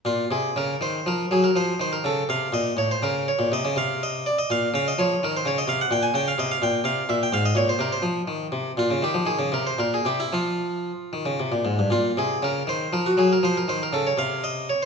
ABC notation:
X:1
M:6/8
L:1/16
Q:3/8=81
K:Bbm
V:1 name="Harpsichord"
F2 A2 B2 c2 B2 A B | c2 c B =A2 f2 e2 d c | B2 d2 e2 f2 e2 =d e | f2 f e d2 B c d e f g |
[K:Cphr] g a g f e f g2 f2 =e g | f e d c B c z6 | F2 G2 A2 B c B A G =E | F8- F2 z2 |
[K:Bbm] F2 A2 B2 c2 B G A B | c B c B =A d f2 e2 d z |]
V:2 name="Harpsichord" clef=bass
B,,2 C,2 D,2 E,2 F,2 G,2 | F,2 E,2 D,2 C,2 B,,2 =A,,2 | D,3 B,, C, D, C,6 | B,,2 D,2 F,2 E,2 D,2 C,2 |
[K:Cphr] B,,2 D,2 C,2 B,,2 C,2 B,,2 | A,,2 B,,2 C,2 F,2 E,2 C,2 | B,, D, E, F, E, D, C,2 B,,2 C,2 | F,6 E, D, C, B,, A,, G,, |
[K:Bbm] B,,2 C,2 D,2 E,2 F,2 G,2 | F,2 E,2 D,2 C,6 |]